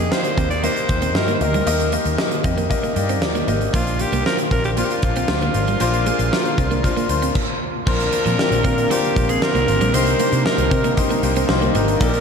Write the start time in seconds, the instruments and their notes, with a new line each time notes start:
Already playing: grand piano D#3 A#3 D#4 G4 D#5, alto saxophone G#4
0.11 grand piano A#3 D#4 G4 F5, alto saxophone C5, snare
0.24 closed hi-hat
0.37 picked electric bass D#2, grand piano A#3 D#4 G4 D#5, clean electric guitar C4, kick, closed hi-hat
0.50 alto saxophone D5, closed hi-hat
0.63 grand piano A#3 D#4 G4 D#5, clean electric guitar A#3, alto saxophone C5, closed hi-hat
0.76 closed hi-hat
0.89 picked electric bass D#2, grand piano A#3 D#4 G4 C5, muted clean electric guitar stroke, kick, closed hi-hat
1.02 clean electric guitar C4, closed hi-hat
1.15 picked electric bass G2, grand piano A#3 D#4 G4 D#5, alto saxophone A#4, snare
1.28 clean electric guitar A#3, closed hi-hat
1.35 alto saxophone C5
1.40 picked electric bass D2, grand piano A#3 D#4 G4 D#5, alto saxophone A#4, muted clean electric guitar stroke, closed hi-hat
1.54 clean electric guitar G3, closed hi-hat
1.66 picked electric bass D#2, grand piano D#3 A#3 D#4 G4 D#5, clean electric guitar A#3, closed hi-hat
1.80 closed hi-hat
1.92 grand piano A#3 D#4 G4 D#5, clean electric guitar A#3, closed hi-hat
2.05 picked electric bass D#2, muted clean electric guitar stroke, closed hi-hat
2.18 grand piano A#3 D#4 G4 D#5, muted clean electric guitar stroke, snare
2.31 closed hi-hat
2.44 picked electric bass F2, grand piano A#3 D#4 G4 D#5, clean electric guitar C4, kick, closed hi-hat
2.58 clean electric guitar A#3, closed hi-hat
2.69 grand piano A#3 D#4 G4 D#5, kick, closed hi-hat
2.83 clean electric guitar A#3, closed hi-hat
2.95 picked electric bass G2, grand piano A#3 D#4 G4 D5, muted clean electric guitar stroke, closed hi-hat
3.09 clean electric guitar C4, closed hi-hat
3.21 picked electric bass D#2, grand piano A#3 D#4 G4 D5, muted clean electric guitar stroke, snare
3.35 clean electric guitar A#3, closed hi-hat
3.47 picked electric bass G#1, grand piano A#3 D#4 G4 D#5, clean electric guitar A#3, closed hi-hat
3.61 closed hi-hat
3.73 picked electric bass A#1, grand piano A#2 A#3 D4 F4 C5, clean electric guitar A#3, alto saxophone F4, kick, closed hi-hat
3.87 closed hi-hat
3.99 grand piano A#3 D4 F4 D5, alto saxophone G4, muted clean electric guitar stroke, closed hi-hat
4.12 picked electric bass C2, clean electric guitar A#3, closed hi-hat
4.25 grand piano A#3 D4 F4 C5, alto saxophone A#4, snare
4.38 closed hi-hat
4.51 picked electric bass A#1, grand piano A#3 D4 F4 C5, clean electric guitar C4, alto saxophone A#4, kick, closed hi-hat
4.64 alto saxophone G4, closed hi-hat
4.76 grand piano A#3 D4 F4 C5, clean electric guitar A#3, alto saxophone F4, closed hi-hat
4.84 alto saxophone G4
4.90 alto saxophone F4, closed hi-hat
5.02 picked electric bass A#1, grand piano A#3 D4 F4 C5, muted clean electric guitar stroke, kick, closed hi-hat
5.16 clean electric guitar C4, closed hi-hat
5.28 picked electric bass D2, grand piano A#3 D4 F4 C5, snare
5.41 clean electric guitar A#3, closed hi-hat
5.54 picked electric bass G#1, grand piano A#3 D4 F4 C5, muted clean electric guitar stroke, closed hi-hat
5.67 clean electric guitar G3, closed hi-hat
5.80 picked electric bass A#1, grand piano A#2 A#3 D4 F4 C5, clean electric guitar A#3, closed hi-hat
5.94 closed hi-hat
6.05 grand piano A#3 D4 F4 G#4, clean electric guitar A#3, closed hi-hat
6.19 picked electric bass A#1, muted clean electric guitar stroke, closed hi-hat
6.31 grand piano A#3 D4 F4 A#4, muted clean electric guitar stroke, snare
6.45 closed hi-hat
6.57 picked electric bass C2, grand piano A#3 D4 F4 C5, clean electric guitar C4, kick, closed hi-hat
6.71 clean electric guitar A#3, closed hi-hat
6.83 grand piano A#3 D4 F4 C5, kick, closed hi-hat
6.97 clean electric guitar A#3, closed hi-hat
7.09 picked electric bass D2, grand piano A#3 D4 F4 C5, muted clean electric guitar stroke, closed hi-hat
7.22 clean electric guitar C4, closed hi-hat
7.35 kick, crash
7.86 picked electric bass A#1, grand piano A#2 A#3 D4 F4 C5, analog synth pad D3 A#3 C4, clean electric guitar A#3, alto saxophone A#4, kick, crash
8.00 closed hi-hat
8.12 grand piano A#3 D4 F4 C5, muted clean electric guitar stroke, closed hi-hat
8.26 picked electric bass A#2, clean electric guitar F3, closed hi-hat
8.38 grand piano A#3 D4 F4 G4, snare
8.51 picked electric bass A#1, closed hi-hat
8.64 picked electric bass A#2, grand piano A#3 D4 F4 A#4, clean electric guitar C4, kick, closed hi-hat
8.78 closed hi-hat
8.90 grand piano A#3 D4 F4 C5, clean electric guitar A#3, alto saxophone G4, closed hi-hat
9.04 closed hi-hat
9.16 picked electric bass A#1, grand piano A#3 D4 F4 C5, muted clean electric guitar stroke, kick, closed hi-hat
9.29 clean electric guitar C4, alto saxophone G#4, closed hi-hat
9.42 grand piano A#3 D4 F4 C5, alto saxophone A#4, snare
9.55 picked electric bass C2, clean electric guitar A#3, closed hi-hat
9.68 picked electric bass G#1, grand piano A#3 D4 F4 C5, muted clean electric guitar stroke, closed hi-hat
9.81 picked electric bass A#1, clean electric guitar G3, closed hi-hat
9.93 picked electric bass C2, grand piano C3 A#3 D#4 G4 C5, analog synth pad C3 G3 D4 D#4, clean electric guitar A#3, alto saxophone C5, closed hi-hat
10.07 closed hi-hat
10.19 grand piano A#3 D#4 G4 C5, clean electric guitar A#3, closed hi-hat
10.32 picked electric bass C3, muted clean electric guitar stroke, closed hi-hat
10.45 grand piano A#3 D#4 G4 C5, alto saxophone A#4, muted clean electric guitar stroke, snare
10.58 picked electric bass C2, closed hi-hat
10.71 picked electric bass C3, grand piano A#3 D#4 G4 A#4, clean electric guitar C4, kick, closed hi-hat
10.84 clean electric guitar A#3, closed hi-hat
10.97 grand piano A#3 D#4 G4 C5, kick, closed hi-hat
11.10 clean electric guitar A#3, closed hi-hat
11.22 picked electric bass C2, grand piano A#3 D#4 G4 C5, muted clean electric guitar stroke, closed hi-hat
11.36 clean electric guitar C4, closed hi-hat
11.48 picked electric bass C2, grand piano A#3 D#4 G4 C5, muted clean electric guitar stroke, snare
11.62 clean electric guitar A#3, closed hi-hat
11.74 picked electric bass G#1, grand piano A#3 D#4 G4 A#4, clean electric guitar A#3, closed hi-hat
11.88 closed hi-hat
12.01 picked electric bass A#1, grand piano A#2 A#3 D#4 G4 D5, analog synth pad D#3, clean electric guitar D#4, alto saxophone A#4, kick, closed hi-hat
12.14 closed hi-hat